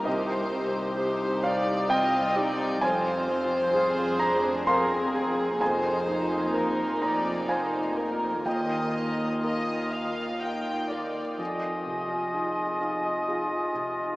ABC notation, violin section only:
X:1
M:3/4
L:1/8
Q:1/4=64
K:Fdor
V:1 name="Violin section"
c2 c d e d | c4 B A | c2 B d c B | e2 e f g d |
z6 |]